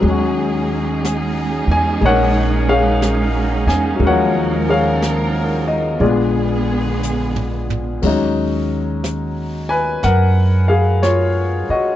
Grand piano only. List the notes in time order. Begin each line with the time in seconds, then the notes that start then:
0.00 F#3 G#3
0.06 C#4 F#4
1.71 G#5
2.01 G#3 A#3 D#4
2.05 A#4 C#5 F#5
2.69 G#4 C#5 F5
3.68 G#5
3.95 F#3
4.00 G#3 C#4
4.05 F3 A#4 C#5 F#5
4.69 G#4 C#5 F5
5.68 D#5
6.01 G#3 B3 D4 F4 G#4 D5
8.02 F#3 G#3 C#4
8.07 D#4
9.69 B4 G#5
10.04 A#4 F#5
10.68 G#4 F5
11.03 F4 C#5
11.70 F#4 D#5